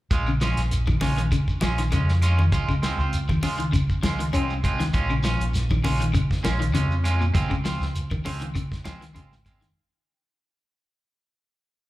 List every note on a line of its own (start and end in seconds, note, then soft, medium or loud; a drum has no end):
0.11 0.55 A#1 medium
0.11 0.30 G#3 medium
0.11 0.30 F4 medium
0.11 muted clean electric guitar stroke medium
0.11 kick medium
0.11 closed hi-hat medium
0.11 high conga soft
0.11 shekere medium
0.27 0.39 C#3 medium
0.27 claves medium
0.27 shekere soft
0.41 0.66 F3 medium
0.41 0.60 G#3 medium
0.41 0.60 C#4 medium
0.41 0.61 F4 medium
0.41 snare medium
0.41 closed hi-hat soft
0.41 shekere medium
0.57 0.99 A#1 medium
0.57 snare soft
0.57 closed hi-hat soft
0.57 shekere soft
0.71 closed hi-hat medium
0.71 high conga soft
0.71 shekere medium
0.87 0.98 D#3 medium
0.87 kick medium
0.87 high conga medium
0.87 claves medium
0.87 shekere soft
1.01 1.30 A#1 medium
1.01 1.14 C#3 medium
1.01 1.20 G#3 medium
1.01 1.21 C#4 medium
1.01 1.21 F4 medium
1.01 open hi-hat medium
1.01 high conga medium
1.01 shekere medium
1.18 1.29 D#3 medium
1.18 closed hi-hat medium
1.18 shekere soft
1.32 1.56 C#3 medium
1.32 kick medium
1.32 closed hi-hat medium
1.32 high conga soft
1.32 claves medium
1.32 shekere medium
1.48 kick medium
1.48 shekere soft
1.61 1.93 A#1 medium
1.61 1.75 F3 medium
1.61 1.81 G#3 medium
1.61 1.81 C#4 medium
1.61 1.82 F4 medium
1.61 snare medium
1.61 closed hi-hat soft
1.61 high conga medium
1.61 claves medium
1.61 shekere medium
1.78 1.89 D#3 medium
1.78 snare soft
1.78 closed hi-hat soft
1.78 shekere soft
1.92 2.49 F2 medium
1.92 2.16 C#3 medium
1.92 2.11 G#3 medium
1.92 2.11 C#4 medium
1.92 2.11 F4 medium
1.92 closed hi-hat medium
1.92 high conga medium
1.92 shekere medium
2.09 snare soft
2.09 shekere soft
2.22 2.41 G#3 medium
2.22 2.41 C#4 medium
2.22 2.42 F4 medium
2.22 closed hi-hat soft
2.22 claves medium
2.22 shekere medium
2.39 2.50 D#3 medium
2.39 high conga medium
2.39 shekere soft
2.52 2.96 C#2 medium
2.52 2.71 G#3 medium
2.52 2.72 F4 medium
2.52 muted clean electric guitar stroke medium
2.52 kick medium
2.52 closed hi-hat medium
2.52 high conga soft
2.52 shekere medium
2.69 2.80 C#3 medium
2.69 kick medium
2.69 claves medium
2.69 shekere soft
2.82 2.99 G#3 medium
2.82 2.99 C4 medium
2.82 2.98 F4 medium
2.82 snare medium
2.82 closed hi-hat soft
2.82 shekere medium
2.99 3.41 C#2 medium
2.99 3.17 C4 soft
2.99 3.16 F4 medium
2.99 shekere soft
3.13 closed hi-hat medium
3.13 high conga soft
3.13 shekere medium
3.29 3.40 D#3 medium
3.29 kick medium
3.29 high conga medium
3.29 claves medium
3.29 shekere soft
3.43 3.72 C#2 medium
3.43 3.56 C#3 medium
3.43 3.62 G#3 medium
3.43 3.62 F4 medium
3.43 muted clean electric guitar stroke medium
3.43 open hi-hat medium
3.43 high conga medium
3.43 shekere medium
3.59 3.70 D#3 medium
3.59 closed hi-hat soft
3.59 shekere soft
3.72 3.97 C#3 medium
3.72 kick medium
3.72 closed hi-hat medium
3.72 high conga soft
3.72 claves medium
3.72 shekere medium
3.90 kick medium
3.90 shekere soft
4.03 4.34 C#2 medium
4.03 4.16 F3 medium
4.03 4.22 G#3 medium
4.03 4.23 F4 medium
4.03 snare medium
4.03 closed hi-hat soft
4.03 high conga medium
4.03 claves medium
4.03 shekere medium
4.19 4.31 D#3 medium
4.19 closed hi-hat soft
4.19 shekere soft
4.33 4.91 C2 medium
4.33 4.53 G#3 medium
4.33 4.53 C4 medium
4.33 4.57 C#4 medium
4.33 4.53 F4 medium
4.33 closed hi-hat medium
4.33 high conga medium
4.33 shekere medium
4.50 shekere soft
4.64 4.83 G#3 medium
4.64 4.83 C4 medium
4.64 4.83 F4 medium
4.64 kick medium
4.64 closed hi-hat soft
4.64 claves medium
4.64 shekere medium
4.80 4.91 D#3 medium
4.80 snare soft
4.80 closed hi-hat soft
4.80 high conga medium
4.80 shekere soft
4.93 5.38 A#1 medium
4.93 5.13 G#3 medium
4.93 5.13 C#4 medium
4.93 5.13 F4 medium
4.93 kick medium
4.93 closed hi-hat medium
4.93 shekere medium
5.10 5.21 C#3 medium
5.10 claves medium
5.10 shekere soft
5.23 5.48 F3 medium
5.23 5.43 C#4 medium
5.23 5.43 F4 medium
5.23 snare medium
5.23 closed hi-hat soft
5.23 shekere medium
5.40 5.82 A#1 medium
5.40 closed hi-hat soft
5.40 shekere soft
5.54 snare soft
5.54 closed hi-hat medium
5.54 high conga soft
5.54 shekere medium
5.70 5.82 D#3 medium
5.70 kick medium
5.70 high conga medium
5.70 claves medium
5.70 shekere soft
5.84 6.13 A#1 medium
5.84 5.97 C#3 medium
5.84 6.03 G#3 medium
5.84 6.03 C#4 medium
5.84 6.04 F4 medium
5.84 open hi-hat medium
5.84 high conga medium
5.84 shekere medium
6.00 6.12 D#3 medium
6.00 closed hi-hat medium
6.00 shekere soft
6.14 6.38 C#3 medium
6.14 kick medium
6.14 closed hi-hat medium
6.14 high conga soft
6.14 claves medium
6.14 shekere medium
6.31 kick medium
6.31 snare soft
6.31 shekere soft
6.43 6.75 A#1 medium
6.43 6.57 F3 medium
6.43 6.63 G#3 medium
6.43 6.63 C#4 medium
6.43 6.64 F4 medium
6.43 snare medium
6.43 closed hi-hat medium
6.43 high conga medium
6.43 claves medium
6.43 shekere medium
6.60 6.71 D#3 medium
6.60 closed hi-hat medium
6.60 shekere soft
6.74 7.32 F2 medium
6.74 6.98 C#3 medium
6.74 6.93 G#3 medium
6.74 6.94 C#4 medium
6.74 6.94 F4 medium
6.74 closed hi-hat medium
6.74 high conga medium
6.74 shekere medium
6.91 shekere soft
7.04 7.23 G#3 medium
7.04 7.24 C#4 medium
7.04 7.24 F4 medium
7.04 closed hi-hat medium
7.04 claves medium
7.04 shekere medium
7.21 7.32 A#2 medium
7.21 shekere soft
7.34 7.79 C#2 medium
7.34 7.53 G#3 medium
7.34 7.53 C4 medium
7.34 7.54 F4 medium
7.34 kick medium
7.34 closed hi-hat medium
7.34 high conga soft
7.34 shekere medium
7.50 7.62 C#3 medium
7.50 kick medium
7.50 claves medium
7.50 shekere soft
7.64 7.89 F3 medium
7.64 7.84 C4 medium
7.64 7.84 F4 medium
7.64 muted clean electric guitar stroke medium
7.64 snare medium
7.64 closed hi-hat medium
7.64 shekere medium
7.81 8.23 C#2 medium
7.81 snare soft
7.81 shekere soft
7.95 closed hi-hat medium
7.95 high conga soft
7.95 shekere medium
8.10 8.23 D#3 medium
8.10 kick medium
8.10 high conga medium
8.10 claves medium
8.10 shekere soft
8.25 8.54 C#2 medium
8.25 8.38 C#3 medium
8.25 8.44 G#3 medium
8.25 8.44 C4 medium
8.25 8.44 F4 medium
8.25 open hi-hat medium
8.25 high conga medium
8.25 shekere medium
8.41 8.53 D#3 medium
8.41 closed hi-hat soft
8.41 shekere soft
8.55 8.79 C#3 medium
8.55 kick medium
8.55 closed hi-hat medium
8.55 high conga soft
8.55 claves medium
8.55 shekere medium
8.72 kick medium
8.72 snare soft
8.72 shekere soft
8.85 9.16 C#2 medium
8.85 8.99 F3 medium
8.85 9.04 G#3 medium
8.85 9.04 C4 medium
8.85 9.05 F4 medium
8.85 snare medium
8.85 closed hi-hat soft
8.85 high conga medium
8.85 claves medium
8.85 shekere medium
9.01 9.13 D#3 medium
9.01 snare soft
9.01 closed hi-hat soft
9.01 shekere soft
9.14 9.73 G#1 medium
9.14 9.39 C#3 medium
9.14 9.34 G#3 medium
9.14 9.34 C4 medium
9.14 9.34 F4 medium
9.14 closed hi-hat medium
9.14 high conga medium
9.14 shekere medium
9.32 snare soft
9.32 shekere soft
9.45 9.65 G#3 medium
9.45 9.65 C4 medium
9.45 9.65 F4 medium
9.45 kick medium
9.45 closed hi-hat soft
9.45 claves medium
9.45 shekere medium
9.61 9.73 D#3 medium
9.61 snare soft
9.61 closed hi-hat medium
9.61 shekere soft